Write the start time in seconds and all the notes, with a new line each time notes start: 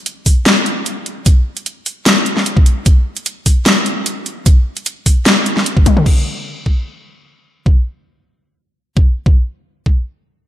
0.06 closed hi-hat
0.26 kick, open hi-hat
0.46 snare, closed hi-hat
0.66 closed hi-hat
0.86 closed hi-hat
1.06 closed hi-hat
1.26 kick, closed hi-hat
1.57 closed hi-hat
1.66 closed hi-hat
1.86 open hi-hat
2.06 snare, closed hi-hat
2.26 closed hi-hat
2.37 snare
2.46 closed hi-hat
2.57 kick
2.66 closed hi-hat
2.86 kick, closed hi-hat
3.17 closed hi-hat
3.26 closed hi-hat
3.46 kick, open hi-hat
3.66 snare, closed hi-hat
3.86 closed hi-hat
4.06 closed hi-hat
4.26 closed hi-hat
4.46 kick, closed hi-hat
4.77 closed hi-hat
4.86 closed hi-hat
5.06 kick, open hi-hat
5.26 snare, closed hi-hat
5.46 closed hi-hat
5.57 snare
5.66 closed hi-hat
5.77 kick
5.86 kick, closed hi-hat, high tom
5.97 mid tom
6.06 kick, crash
6.66 kick
7.66 kick
8.97 kick
9.26 kick
9.86 kick